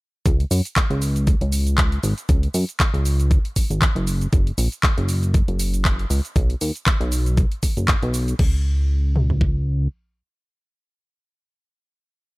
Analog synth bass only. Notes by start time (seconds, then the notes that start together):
0.26 C#2
0.51 F#2
0.90 C#2
1.41 C#2
2.03 G#1
2.29 C#2
2.54 F#2
2.94 C#2
3.70 G#1
3.95 F#1
4.33 F#1
4.58 A#1
4.98 F#1
5.48 F#1
6.10 C#2
6.36 B1
6.61 D#2
7.01 B1
7.77 F#1
8.03 B1
8.39 C#2